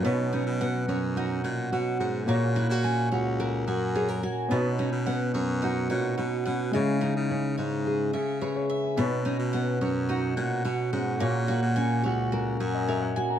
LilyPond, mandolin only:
\new Staff \with { instrumentName = "Mandolin" } { \time 4/4 \key b \major \tempo 4 = 108 b8 dis'8 fis''8 cis''8 dis'8 fis''8 cis''8 fis''8 | ais8 fis'8 gis''8 cis''8 fis'8 gis''8 cis''8 gis''8 | b8 dis'8 fis''8 cis''8 dis'8 fis''8 cis''8 fis''8 | gis8 dis'4 cis''4 e''8 cis''8 e''8 |
b8 dis'8 fis''8 cis''8 dis'8 fis''8 cis''8 fis''8 | ais8 fis'8 gis''8 cis''8 fis'8 gis''8 cis''8 gis''8 | }